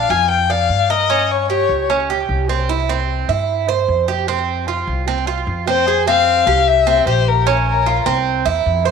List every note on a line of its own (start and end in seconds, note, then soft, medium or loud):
0.00 0.12 F5 medium
0.10 0.66 F2 medium
0.10 0.49 F4 medium
0.10 0.30 G#5 loud
0.31 0.52 G5 medium
0.50 0.89 D5 medium
0.50 0.92 F5 loud
0.69 1.63 G2 medium
0.90 1.09 A#4 medium
0.90 1.33 D#5 loud
1.10 1.48 C#4 medium
1.31 1.50 C#5 medium
1.50 1.88 G4 medium
1.50 1.87 C#5 medium
1.69 2.25 C#2 medium
1.90 2.09 C#4 medium
2.10 2.48 G4 medium
2.29 3.22 C2 medium
2.49 2.68 C4 medium
2.69 2.88 E4 medium
2.89 3.28 C4 medium
3.28 3.84 G2 medium
3.28 3.67 E4 medium
3.68 4.07 C5 medium
3.88 4.82 F2 medium
4.08 4.27 G4 medium
4.28 4.67 C4 medium
4.68 5.07 F4 medium
4.87 5.43 C2 medium
5.08 5.27 C4 medium
5.27 5.66 F4 medium
5.47 6.41 F2 medium
5.67 5.87 C4 medium
5.67 6.05 C5 medium
5.88 6.07 G#4 medium
6.07 6.46 C4 medium
6.07 6.69 F5 loud
6.46 7.02 C2 medium
6.46 6.86 G4 medium
6.67 7.07 E5 loud
6.87 7.06 C4 medium
7.06 8.00 A#1 medium
7.06 7.45 G4 medium
7.06 7.29 C5 loud
7.28 7.67 A#4 medium
7.47 7.85 C#4 medium
7.68 8.04 A#4 medium
7.86 8.05 F4 medium
8.06 8.43 C2 medium
8.06 8.45 C4 medium
8.46 8.64 E2 medium
8.46 8.84 E4 medium
8.66 8.91 F2 medium
8.85 8.91 C5 medium